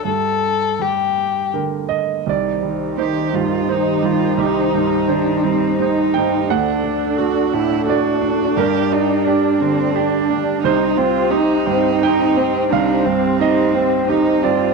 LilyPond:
<<
  \new Staff \with { instrumentName = "Analog synth pad" } { \time 3/4 \key c \minor \tempo 4 = 86 << { r2. | <ees c''>2.~ | <ees c''>2. | d''2.~ |
d''2. | <c' c''>2.~ | <c' c''>2. | } \\ { r2. | g'2.~ | g'2. | a'2. |
g'2.~ | g'2.~ | g'2. | } >> }
  \new Staff \with { instrumentName = "Cello" } { \time 3/4 \key c \minor r2. | r4 g'8 f'8 ees'8 f'8 | ees'4 d'8 c'8 ees'4 | d'4 fis'8 e'8 fis'4 |
g'8 ees'8 d'8 c'8 d'4 | ees'8 f'8 ees'2 | d'8 c'4. ees'8 f'8 | }
  \new Staff \with { instrumentName = "Upright piano" } { \time 3/4 \key c \minor << { r2 r8 ees''8 | d''2 r4 | g'2~ g'8 g''8 | fis''2 d''4 |
bes'2~ bes'8 r8 | c''2 g''4 | f''4 ees''4. d''8 | } \\ { g,4 g4 <d bes'>4 | c,8 g8 <ees' c''>8 g,8 <ees' c''>8 g8 | c,8 g,8 <ees c''>8 g8 <ees' c''>8 g,8 | d,8 d'8 <d' a'>8 a,8 <d' a'>8 d'8 |
g,8 d''8 <d' g'>8 d8 <d' g'>8 d'8 | c,8 c'8 <ees' g'>8 g,8 <ees' g'>8 c'8 | c,8 g,8 <ees' g'>8 c'8 <ees' g'>8 g,8 | } >> }
  \new Staff \with { instrumentName = "Violin" } { \time 3/4 \key c \minor a'4 g'4 r4 | ees'2.~ | ees'2. | d'2.~ |
d'2. | ees'8 c'8 ees'8 c'8 ees'8 c'8 | ees'8 c'8 ees'8 c'8 ees'8 c'8 | }
>>